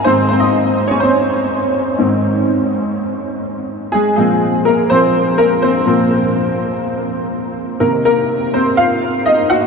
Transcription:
<<
  \new Staff \with { instrumentName = "Upright piano" } { \time 4/4 \key aes \mixolydian \tempo 4 = 124 <c' c''>8 <c' c''>16 <ees' ees''>4 <des' des''>16 <c' c''>2~ | <c' c''>2. r4 | <aes aes'>8 <aes aes'>4 <bes bes'>8 c''4 <bes bes'>8 <c' c''>8~ | <c' c''>4. r2 r8 |
bes'8 <bes bes'>4 <c' c''>8 <f' f''>4 <ees' ees''>8 <ges' ges''>8 | }
  \new Staff \with { instrumentName = "Upright piano" } { \clef bass \time 4/4 \key aes \mixolydian <aes, ees>4. r2 r8 | <aes, ees c'>4. r2 r8 | r8 <bes, f c'>8 r4 <bes, f c'>8 r4. | <bes, f c'>4. r2 r8 |
<c ees bes>1 | }
>>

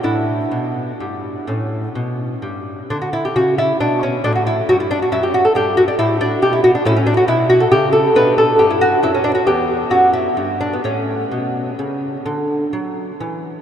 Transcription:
<<
  \new Staff \with { instrumentName = "Lute" } { \time 12/8 \key d \major \tempo 4. = 88 << { e'1~ e'4. r8 | d'16 fis'16 e'16 g'16 fis'8 e'8 d'8 cis'8 d'16 fis'16 e'8 fis'16 e'16 d'16 fis'16 e'16 g'16 fis'16 a'16 | g'8 fis'16 d'16 e'8 d'8 g'16 e'16 fis'16 d'16 e'16 cis'16 d'16 fis'16 e'8 fis'16 a'16 g'8 a'8 | b'8 a'8 g'16 e'16 fis'8 e'16 cis'16 d'16 fis'16 g'4 fis'8 e'4 d'16 b16 |
cis'1~ cis'4. r8 | } \\ { d'2. cis'2. | r1. | d'2. cis'2. | d'2. b2. |
a1. | } >> }
  \new Staff \with { instrumentName = "Lute" } { \clef bass \time 12/8 \key d \major a,4 b,4 g,4 a,4 b,4 g,4 | d4 cis4 b,4 a,4 g,4 fis,4 | g,4 a,4 b,4 a,4 b,4 cis4 | b,4 g,4 fis,4 e,4 fis,4 g,4 |
a,4 b,4 cis4 d4 fis4 e4 | }
>>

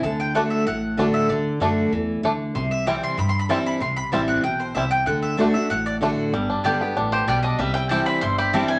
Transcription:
<<
  \new Staff \with { instrumentName = "Mandolin" } { \time 4/4 \key d \mixolydian \tempo 4 = 190 r1 | r1 | r1 | r1 |
r1 | r2 r8 c''8 d''8 ees''8 | e''8 g''8 a''8 b''8 c'''8 b''8 a''8 gis''8 | }
  \new Staff \with { instrumentName = "Mandolin" } { \time 4/4 \key d \mixolydian a''8 g''8 fis''8 e''8 fis''4. e''8 | d''2. r4 | c'''8 e''8 g''8 c'''8 \tuplet 3/2 { b''8 c'''8 b''8 } a''8 b''8 | c'''8 b''8 a''8 fis''8 g''8 c''8 e''8 g''8 |
fis''8 e''8 c''8 e''8 fis''8 d''8 r4 | r4 <b g' d'' g''>8 r4. <b g' d'' g''>8 r8 | r4 <c' e' c'' g''>8 r4. <c' e' c'' g''>8 r8 | }
  \new Staff \with { instrumentName = "Five-string banjo" } { \time 4/4 \key d \mixolydian r4 <a d'>8 r4. <a d'>8 r8 | r4 <a d'>8 r4. <a d'>8 r8 | r4 <g c' e'>8 r4. <g c' e'>8 r8 | r4 <g c' e'>8 r4. <g c' e'>8 r8 |
r4 <a d'>8 r4. <a d'>8 r8 | g8 d'8 g'8 b8 d'8 g'8 g8 d'8 | g8 e'8 g'8 c'8 e'8 g'8 g8 e'8 | }
  \new Staff \with { instrumentName = "Steel-string acoustic guitar" } { \clef bass \time 4/4 \key d \mixolydian << { r4 <d a d' fis'>4 r4 <d a d' fis'>4 | r4 <d a d' fis'>4 r2 | r4 <e g c' e'>4 r4 <e g c' e'>4 | r4 <e g c' e'>4 r2 |
r4 <d a d' fis'>8 <d' fis'>8 r4 <d a d' fis'>4 | r4 <d g b g'>8 <b g'>8 r2 | r4 <e g c' e'>4 r4 <e g c' e'>4 | } \\ { d2 a,2 | d2 e4 d4 | c2 g,2 | c2 b,4 c4 |
d2 a,2 | g,2 a,4 b,4 | c2 g,2 | } >> }
  \new Staff \with { instrumentName = "Upright bass" } { \clef bass \time 4/4 \key d \mixolydian d,2 a,,2 | d,4 fis,4 e,4 d,4 | c,2 g,2 | c,4 a,,4 b,,4 c,4 |
d,2 a,,2 | g,,4 g,,4 a,,4 b,,4 | c,2 g,,2 | }
>>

